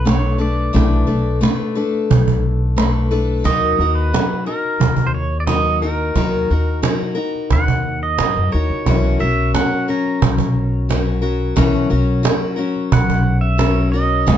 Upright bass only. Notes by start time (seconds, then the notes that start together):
Already playing: B1
0.74 B1
1.09 B1
2.10 B1
3.45 D#2
3.79 D#2
4.80 D#2
6.16 D#2
6.50 D#2
7.52 D#2
8.19 G#2
8.36 F#2
8.54 D#2
8.70 C#2
8.88 B1
9.22 B1
10.22 B1
11.57 B1
11.91 B1
12.93 B1
14.28 G#1